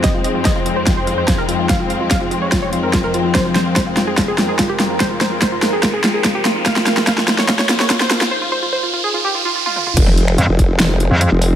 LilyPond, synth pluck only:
\new Staff \with { instrumentName = "Synth pluck" } { \time 4/4 \key f \minor \tempo 4 = 145 ees''16 f'16 ees''16 f'16 ees''16 f'16 f'16 c''16 f'16 c''16 f'16 c''16 f'16 bes'16 f'16 f'16 | f''16 f'16 f''16 f'16 f''16 f'16 f'16 des''16 f'16 des''16 f'16 bes'16 f'16 bes'16 f'16 f'16 | c''16 f'16 c''16 f'16 c''16 f'16 f'16 aes'16 f'16 aes'16 f'16 aes'16 f'16 g'16 f'16 f'16 | c''16 f'16 c''16 f'16 c''16 f'16 f'16 aes'16 f'16 aes'16 f'16 aes'16 f'16 g'16 f'16 f'16 |
f''16 f'16 f''16 f'16 f''16 f'16 f'16 des''16 f'16 des''16 f'16 des''16 f'16 c''16 f'16 f'16 | c''16 f'16 c''16 f'16 c''16 f'16 f'16 aes'16 f'16 g'16 f'16 f'16 f'16 f'16 f'16 f'16 | r1 | }